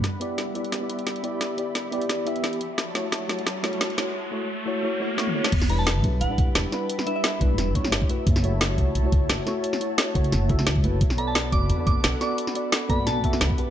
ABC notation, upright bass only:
X:1
M:4/4
L:1/8
Q:"Swing 16ths" 1/4=175
K:Edor
V:1 name="Upright bass" clef=bass
E,,,3 B,,, A,,, B,,, E,,, z | z3 B,,, E,,, E,,,2 F,,, | F,,,3 C,, B,,, C,, F,,, z | z8 |
E,,,3 B,,, A,,, B,,, E,,, z | z3 B,,, E,,, B,,, G,,, z | F,,,3 C,, B,,, C,, F,,, z | z3 C,, F,,, C,, C,, F,,, |
B,,,3 F,,, E,, F,,, B,,, z | z3 F,,, B,,, F,,, D,, z |]